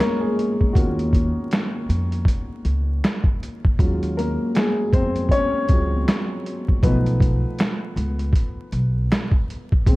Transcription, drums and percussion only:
0.00 finger snap, snare, closed hi-hat
0.39 closed hi-hat
0.61 kick
0.75 kick, closed hi-hat
0.99 closed hi-hat
1.13 kick, closed hi-hat
1.51 finger snap, snare, closed hi-hat
1.90 closed hi-hat
2.12 closed hi-hat
2.25 kick, closed hi-hat
2.65 closed hi-hat
3.04 finger snap, snare, closed hi-hat
3.24 kick
3.43 closed hi-hat
3.65 kick
3.79 kick, closed hi-hat
4.03 closed hi-hat
4.19 closed hi-hat
4.55 finger snap, snare, closed hi-hat
4.93 kick, closed hi-hat
5.16 closed hi-hat
5.29 kick, closed hi-hat
5.69 kick, closed hi-hat
6.08 finger snap, snare, closed hi-hat
6.46 closed hi-hat
6.68 kick
6.83 kick, closed hi-hat
7.06 closed hi-hat
7.20 kick, closed hi-hat
7.59 finger snap, snare, closed hi-hat
7.97 closed hi-hat
8.19 closed hi-hat
8.33 kick, closed hi-hat
8.72 closed hi-hat
9.12 finger snap, snare, closed hi-hat
9.32 kick
9.50 closed hi-hat
9.72 kick
9.86 kick, closed hi-hat

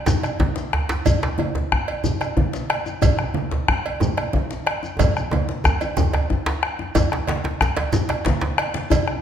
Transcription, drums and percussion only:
0.06 djembe slap, low conga, djembe bass, shekere
0.23 bombo rim, cowbell, shekere
0.39 bombo low, djembe slap, high conga, djembe tone
0.56 djembe slap, high conga, shekere
0.73 bombo rim, djembe tone
0.89 djembe slap, djembe tone, shekere
1.05 bombo low, cowbell, low conga, djembe bass, shekere
1.22 bombo rim, djembe slap, high conga
1.38 cowbell, high conga, djembe tone
1.55 djembe slap, djembe tone
1.72 bombo rim, bombo low
1.88 cowbell
2.04 low conga, djembe bass, shekere
2.21 bombo rim, cowbell, shekere
2.37 bombo low, djembe tone, high conga
2.53 djembe slap, high conga, shekere
2.70 bombo rim, cowbell
2.86 djembe tone, shekere
3.02 bombo low, cowbell, djembe tone, djembe bass, low conga, shekere
3.18 bombo rim, high conga
3.34 high conga, djembe tone
3.51 djembe slap, djembe tone
3.68 bombo rim, bombo low
3.86 cowbell
4.00 djembe tone, low conga, djembe bass, shekere
4.17 bombo rim, cowbell
4.33 bombo low, high conga, djembe tone
4.51 djembe slap, high conga, shekere
4.67 bombo rim, cowbell
4.83 djembe slap, djembe tone, shekere
4.99 bombo rim, bombo low, cowbell, djembe slap, djembe tone, djembe bass, low conga, shekere
5.17 bombo rim, shekere
5.31 cowbell, djembe tone, high conga
5.48 djembe slap, high conga
5.64 bombo rim, bombo low, djembe tone, shekere
5.81 bombo rim, cowbell, djembe slap, high conga, djembe tone, shekere
5.97 djembe slap, high conga, djembe tone, low conga, djembe bass, shekere
6.13 bombo rim, cowbell, djembe tone
6.30 bombo low, djembe tone
6.46 djembe slap
6.63 bombo rim
6.79 djembe slap, djembe tone, high conga
6.95 bombo rim, bombo low, cowbell, djembe slap, high conga, low conga, djembe bass, shekere
7.12 bombo rim, djembe slap
7.27 cowbell, djembe slap, high conga
7.44 djembe slap, djembe tone, high conga
7.61 bombo rim, bombo low, djembe slap, shekere
7.76 cowbell, djembe slap, high conga
7.92 djembe slap, low conga, djembe bass, shekere
8.09 bombo rim, cowbell, djembe slap, high conga
8.25 bombo low, djembe slap, high conga, shekere
8.41 djembe slap, djembe tone
8.58 bombo rim, cowbell, high conga
8.74 bombo rim, djembe slap, high conga
8.90 bombo rim, bombo low, cowbell, high conga, djembe bass, low conga, shekere
9.08 bombo rim

